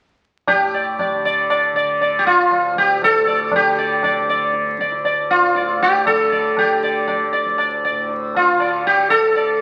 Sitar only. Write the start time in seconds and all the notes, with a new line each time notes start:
0.48 G4
0.74 D5
0.99 D5
1.25 D5
1.50 D5
1.76 D5
2.02 D5
2.19 G4
2.27 F4
2.78 G4
3.04 A4
3.27 D5
3.56 G4
3.78 D5
4.04 D5
4.29 D5
4.81 D5
5.05 D5
5.31 F4
5.56 D5
5.82 G4
6.07 A4
6.32 D5
6.59 G4
6.83 D5
7.08 D5
7.33 D5
7.58 D5
7.85 D5
8.36 F4
8.60 D5
8.87 G4
9.10 A4
9.36 D5